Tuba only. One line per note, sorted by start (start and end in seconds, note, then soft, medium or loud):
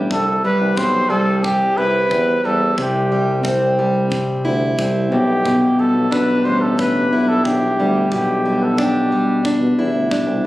0.11 0.38 C2 medium
0.60 0.74 C2 medium
0.77 1.04 B1 medium
1.10 1.65 C2 medium
1.78 2.05 C2 medium
2.11 2.38 E2 medium
2.44 2.72 E2 medium
2.78 4.13 C2 medium
4.45 4.72 D2 medium
4.78 5.05 C2 medium
5.11 5.66 B1 medium
5.94 6.08 B1 medium
6.12 6.47 B1 medium
6.45 7.13 A1 medium
7.11 7.39 B1 medium
7.45 7.72 B1 medium
7.78 8.05 D2 medium
8.12 9.14 B1 medium
9.60 9.74 B2 medium
9.77 9.91 E2 medium
9.93 10.07 D2 medium
10.26 10.41 C2 medium
10.43 10.46 A1 medium